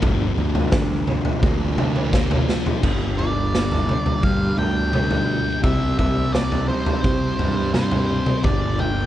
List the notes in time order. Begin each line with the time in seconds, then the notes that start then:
Already playing: F3 G3 A#3 C4 D4 F4
0.02 G1 G2, kick, floor tom
0.38 D2 D3, high conga
0.55 floor tom
0.72 D3, kick, snare, high conga
0.91 high conga
1.07 F3, mid tom, low conga
1.25 floor tom
1.43 D2 A#3, kick
1.61 high conga
1.78 D4, floor tom, mid tom
1.96 mid tom, low conga
2.13 A#3, kick, snare, high conga
2.31 floor tom, mid tom, high conga
2.48 F3, snare, low conga
2.66 floor tom, low conga
2.82 G1 G2 D3 G3 A#3 D4 G4, kick, floor tom, crash
3.18 D5, floor tom
3.55 snare
3.72 floor tom
3.87 G2 D3 G3, mid tom
4.06 floor tom
4.23 G2 F5, kick
4.58 D2 G5, floor tom
4.93 G2 D3 G3, mid tom
5.11 floor tom
5.62 C2 C3 G3 C4 E4 E5, kick, floor tom
5.99 E5, kick, floor tom
6.32 D5, snare
6.52 floor tom
6.68 C3 G3 C4 C5
6.86 floor tom
7.04 C3, kick
7.39 G2, floor tom
7.74 C3 G3 C4 C5, snare, mid tom
7.91 floor tom, mid tom
8.26 mid tom
8.44 G1 G2 D3 G3 A#3 D4 D5, kick, floor tom
8.79 G5, floor tom